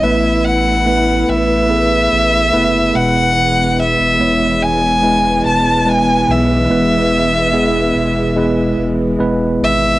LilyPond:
<<
  \new Staff \with { instrumentName = "Violin" } { \time 4/4 \key e \major \tempo 4 = 72 e''8 fis''4 e''2 fis''8~ | fis''8 e''4 gis''4 a''8 gis''8 e''8~ | e''2~ e''8 r4 e''8 | }
  \new Staff \with { instrumentName = "Tine electric piano" } { \time 4/4 \key e \major <a b e' b'>4 <a b e' b'>4 <a b e' gis'>4 <a b e' b'>8 <gis b e' b'>8~ | <gis b e' b'>4 <gis b e' cis''>4 <gis b e' b'>4 <gis b e' b'>4 | <gis b e' b'>4 <gis b e' gis'>4 <gis b e' b'>4 <gis b e' b'>4 | }
  \new Staff \with { instrumentName = "Tine electric piano" } { \clef bass \time 4/4 \key e \major r2. r8 b,8~ | b,4 r2 r8 b,8~ | b,4 r2. | }
  \new Staff \with { instrumentName = "String section" } { \time 4/4 \key e \major <a e' b'>2.~ <a e' b'>8 <e gis b>8~ | <e gis b>1~ | <e gis b>1 | }
  \new Staff \with { instrumentName = "Sub bass" } { \clef bass \time 4/4 \key e \major a,,4. a,,4 a,,8 fis,,8 e,,8~ | e,,8. e,,16 e,,4. e,,4 b,,8 | e,,4. e,,4 e,,8 e,,8 gis,,8 | }
>>